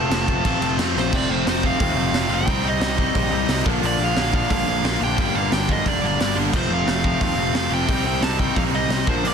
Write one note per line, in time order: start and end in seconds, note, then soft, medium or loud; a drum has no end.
0.00 0.42 F2 loud
0.00 0.44 C3 loud
0.00 0.10 F3 medium
0.00 0.44 F3 loud
0.00 0.10 A3 medium
0.00 0.11 C4 medium
0.00 2.48 C4 medium
0.00 0.10 F4 medium
0.00 0.76 A5 medium
0.10 0.41 F1 loud
0.10 0.29 F3 medium
0.10 0.28 A3 loud
0.10 0.28 C4 medium
0.10 0.27 F4 medium
0.10 snare loud
0.10 crash medium
0.28 0.43 F3 medium
0.28 0.44 A3 medium
0.28 0.44 C4 medium
0.28 0.45 F4 medium
0.28 kick loud
0.28 crash medium
0.44 0.60 A1 medium
0.44 1.10 F2 medium
0.44 1.11 C3 medium
0.44 0.62 F3 loud
0.44 0.62 A3 loud
0.44 0.61 C4 loud
0.44 0.60 F4 loud
0.44 kick loud
0.44 crash medium
0.61 0.76 F1 medium
0.61 0.78 F3 medium
0.61 0.79 A3 medium
0.61 0.78 C4 medium
0.61 0.79 F4 medium
0.61 crash medium
0.78 0.93 F2 loud
0.78 0.95 F3 medium
0.78 0.94 A3 medium
0.78 0.94 C4 loud
0.78 0.93 F4 medium
0.78 snare loud
0.78 crash medium
0.94 1.11 A#1 medium
0.94 1.12 F3 medium
0.94 1.12 A3 medium
0.94 1.12 C4 loud
0.94 1.11 F4 loud
0.94 1.14 C5 medium
0.94 snare medium
1.12 1.26 F1 medium
1.12 1.30 F2 loud
1.12 1.30 C3 loud
1.12 1.29 F3 loud
1.12 1.28 A3 loud
1.12 1.29 C4 loud
1.12 1.30 D5 loud
1.12 kick loud
1.12 crash loud
1.29 1.42 F1 loud
1.29 1.45 F2 medium
1.29 1.45 C3 medium
1.29 1.46 F3 medium
1.29 1.47 A3 medium
1.29 1.47 C4 loud
1.29 1.46 C5 medium
1.45 1.72 F1 loud
1.45 1.65 F2 medium
1.45 1.64 C3 medium
1.45 1.64 F3 medium
1.45 1.64 A3 medium
1.45 1.62 C4 medium
1.45 1.65 C5 medium
1.45 snare loud
1.45 open hi-hat medium
1.63 1.78 F2 medium
1.63 1.79 C3 medium
1.63 1.79 F3 loud
1.63 1.80 A3 loud
1.63 1.80 C4 loud
1.63 2.34 F5 medium
1.63 kick medium
1.79 1.93 D#2 medium
1.79 1.97 F2 medium
1.79 1.97 C3 medium
1.79 1.96 F3 loud
1.79 1.96 A3 loud
1.79 1.95 C4 loud
1.79 kick loud
1.79 open hi-hat medium
1.95 2.09 F1 medium
1.95 2.11 F2 medium
1.95 2.12 C3 medium
1.95 2.12 F3 medium
1.95 2.13 A3 medium
1.95 2.13 C4 medium
2.12 2.26 F1 medium
2.12 2.30 F2 loud
2.12 2.29 C3 medium
2.12 2.29 F3 medium
2.12 2.28 A3 medium
2.12 2.28 C4 medium
2.12 snare loud
2.12 open hi-hat medium
2.29 2.47 F1 medium
2.29 2.47 F2 medium
2.29 2.44 C3 medium
2.29 2.46 F3 medium
2.29 2.46 A3 medium
2.29 2.45 C4 medium
2.34 2.67 G5 loud
2.45 2.61 C2 medium
2.45 2.64 C3 loud
2.45 2.63 G3 loud
2.45 2.62 C4 loud
2.45 2.62 D#4 loud
2.45 kick loud
2.45 open hi-hat medium
2.63 2.77 C2 medium
2.63 2.79 C3 medium
2.63 2.79 G3 medium
2.63 2.79 C4 medium
2.63 2.80 D#4 medium
2.67 3.64 D#5 loud
2.80 3.07 C2 loud
2.80 2.97 C3 medium
2.80 2.97 G3 medium
2.80 2.97 C4 medium
2.80 2.96 D#4 medium
2.80 snare loud
2.80 open hi-hat medium
2.97 3.13 C3 medium
2.97 3.14 G3 medium
2.97 3.14 C4 loud
2.97 3.15 D#4 loud
2.97 kick medium
3.15 3.29 A#1 medium
3.15 3.32 C3 medium
3.15 3.31 G3 medium
3.15 3.31 C4 loud
3.15 3.30 D#4 loud
3.15 kick loud
3.15 open hi-hat medium
3.31 3.45 C2 medium
3.31 3.46 C3 medium
3.31 3.47 G3 loud
3.31 3.48 C4 medium
3.31 3.48 D#4 loud
3.47 3.62 C2 medium
3.47 3.64 C3 medium
3.47 3.65 G3 medium
3.47 3.65 C4 medium
3.47 3.65 D#4 medium
3.47 snare loud
3.47 open hi-hat medium
3.64 3.79 A#1 loud
3.64 3.82 A#2 loud
3.64 3.82 D3 loud
3.64 3.82 F3 loud
3.64 3.81 A#3 loud
3.64 3.81 D4 loud
3.64 kick loud
3.81 3.96 A#1 medium
3.81 3.97 A#2 loud
3.81 3.98 D3 loud
3.81 3.99 F3 loud
3.81 4.00 A#3 loud
3.81 4.01 D4 loud
3.81 open hi-hat medium
3.86 4.04 D5 medium
3.99 4.12 A#1 medium
3.99 4.17 A#2 medium
3.99 4.17 D3 medium
3.99 4.16 F3 loud
3.99 4.16 A#3 loud
3.99 4.16 D4 loud
4.04 4.34 F5 loud
4.16 4.43 A#1 loud
4.16 4.31 A#2 medium
4.16 4.32 D3 medium
4.16 4.32 F3 medium
4.16 4.34 A#3 loud
4.16 4.34 D4 loud
4.16 snare loud
4.16 open hi-hat medium
4.33 4.51 A#2 medium
4.33 4.51 D3 loud
4.33 4.50 F3 loud
4.33 4.49 A#3 medium
4.33 4.48 D4 loud
4.33 4.52 F5 medium
4.33 kick loud
4.49 4.63 G1 loud
4.49 4.66 A#2 medium
4.49 4.68 D3 medium
4.49 4.68 F3 loud
4.49 4.69 A#3 loud
4.49 4.69 D4 medium
4.49 4.99 F5 loud
4.49 kick loud
4.49 open hi-hat medium
4.67 4.80 A#1 medium
4.67 4.85 A#2 loud
4.67 4.85 D3 medium
4.67 4.84 F3 medium
4.67 4.84 A#3 loud
4.67 4.83 D4 loud
4.83 4.97 A#1 loud
4.83 5.00 A#2 medium
4.83 5.01 D3 medium
4.83 5.01 F3 medium
4.83 5.02 A#3 medium
4.83 5.02 D4 loud
4.83 snare loud
4.83 open hi-hat medium
5.00 5.14 A#1 medium
5.00 5.17 A#2 medium
5.00 5.18 D3 loud
5.00 5.18 F3 medium
5.00 5.18 A#3 loud
5.00 5.18 D4 loud
5.00 5.37 G5 loud
5.18 5.31 G1 medium
5.18 5.36 G2 loud
5.18 5.35 D3 medium
5.18 5.35 G3 loud
5.18 5.35 A#3 loud
5.18 5.33 D4 loud
5.18 kick loud
5.18 open hi-hat medium
5.35 5.48 G1 medium
5.35 5.51 G2 medium
5.35 5.52 D3 medium
5.35 5.53 G3 medium
5.35 5.53 A#3 loud
5.35 5.54 D4 medium
5.35 5.51 F5 loud
5.52 5.78 G1 loud
5.52 5.70 G2 medium
5.52 5.69 D3 medium
5.52 5.68 G3 loud
5.52 5.68 A#3 medium
5.52 5.67 D4 loud
5.52 5.70 G5 loud
5.52 snare loud
5.52 open hi-hat medium
5.68 5.84 G2 medium
5.68 5.85 D3 loud
5.68 5.85 G3 loud
5.68 5.86 A#3 loud
5.68 5.86 D4 loud
5.68 5.86 D#5 medium
5.68 kick medium
5.85 5.99 F1 loud
5.85 6.03 G2 medium
5.85 6.03 D3 loud
5.85 6.02 G3 loud
5.85 6.02 A#3 medium
5.85 6.01 D4 medium
5.85 6.04 D5 medium
5.85 kick loud
5.85 open hi-hat medium
6.02 6.16 G1 medium
6.02 6.18 G2 medium
6.02 6.19 D3 medium
6.02 6.19 G3 medium
6.02 6.20 A#3 loud
6.02 6.20 D4 loud
6.02 6.36 D5 medium
6.19 6.33 G1 loud
6.19 6.37 G2 medium
6.19 6.37 D3 medium
6.19 6.36 G3 medium
6.19 6.36 A#3 medium
6.19 6.35 D4 medium
6.19 snare loud
6.19 open hi-hat medium
6.36 6.49 G1 medium
6.36 6.54 G2 medium
6.36 6.53 D3 medium
6.36 6.53 G3 medium
6.36 6.53 A#3 medium
6.36 6.53 D4 loud
6.53 6.67 F1 medium
6.53 6.70 F2 loud
6.53 6.70 C3 loud
6.53 6.70 F3 loud
6.53 6.69 A3 loud
6.53 6.69 C4 loud
6.53 6.72 C5 medium
6.53 kick loud
6.53 crash loud
6.68 6.82 F1 medium
6.68 6.85 F2 medium
6.68 6.86 C3 medium
6.68 6.86 F3 medium
6.68 6.87 A3 loud
6.68 6.89 C4 medium
6.73 7.03 F5 loud
6.86 7.13 F1 medium
6.86 7.04 F2 medium
6.86 7.03 C3 medium
6.86 7.02 F3 medium
6.86 7.02 A3 medium
6.86 7.02 C4 medium
6.86 snare loud
6.86 open hi-hat medium
7.03 7.18 F2 medium
7.03 7.19 C3 loud
7.03 7.19 F3 medium
7.03 7.20 A3 medium
7.03 7.21 C4 loud
7.03 7.21 F5 medium
7.03 kick medium
7.19 7.34 D#2 loud
7.19 7.38 F2 medium
7.19 7.38 C3 loud
7.19 7.37 F3 loud
7.19 7.37 A3 loud
7.19 7.36 C4 medium
7.19 7.74 F5 medium
7.19 kick loud
7.19 open hi-hat medium
7.36 7.50 F1 loud
7.36 7.53 F2 medium
7.36 7.53 C3 medium
7.36 7.54 F3 loud
7.36 7.54 A3 medium
7.36 7.55 C4 medium
7.53 7.67 F1 loud
7.53 7.72 F2 medium
7.53 7.71 C3 medium
7.53 7.71 F3 medium
7.53 7.70 A3 medium
7.53 7.70 C4 medium
7.53 snare loud
7.53 open hi-hat medium
7.70 7.84 F1 medium
7.70 7.88 F2 medium
7.70 7.87 C3 medium
7.70 7.88 F3 medium
7.70 7.87 A3 medium
7.70 7.87 C4 loud
7.70 8.06 G5 loud
7.88 8.02 C2 medium
7.88 8.05 C3 loud
7.88 8.05 G3 loud
7.88 8.05 C4 loud
7.88 8.04 D#4 loud
7.88 kick loud
7.88 open hi-hat medium
8.04 8.18 C2 medium
8.04 8.22 C3 medium
8.04 8.22 G3 medium
8.04 8.22 C4 loud
8.04 8.23 D#4 medium
8.04 8.23 G5 loud
8.21 8.48 C2 loud
8.21 8.41 C3 medium
8.21 8.40 G3 medium
8.21 8.39 C4 medium
8.21 8.38 D#4 medium
8.21 8.39 A5 loud
8.21 snare loud
8.21 open hi-hat medium
8.39 8.55 C3 medium
8.39 8.55 G3 medium
8.39 8.56 C4 loud
8.39 8.56 D#4 loud
8.39 8.57 G5 loud
8.39 kick medium
8.56 8.69 A#1 loud
8.56 8.74 C3 loud
8.56 8.74 G3 loud
8.56 8.74 C4 loud
8.56 8.73 D#4 medium
8.56 8.61 F5 loud
8.56 kick loud
8.56 open hi-hat medium
8.71 8.85 C2 loud
8.71 8.89 C3 medium
8.71 8.90 G3 medium
8.71 8.90 C4 loud
8.71 8.90 D#4 loud
8.71 9.09 D#5 loud
8.89 9.03 C2 medium
8.89 9.06 C3 medium
8.89 9.06 G3 loud
8.89 9.07 C4 medium
8.89 9.07 D#4 loud
8.89 snare loud
8.89 open hi-hat medium
9.07 9.20 A#1 medium
9.07 9.25 A#2 loud
9.07 9.24 D3 loud
9.07 9.24 F3 loud
9.07 9.25 A#3 loud
9.07 9.23 D4 loud
9.07 9.27 C5 medium
9.07 kick loud
9.23 9.34 A#1 loud
9.23 9.34 A#2 medium
9.23 9.34 D3 loud
9.23 9.34 F3 loud
9.23 9.34 A#3 loud
9.23 9.34 D4 loud
9.23 9.34 D5 loud
9.23 open hi-hat medium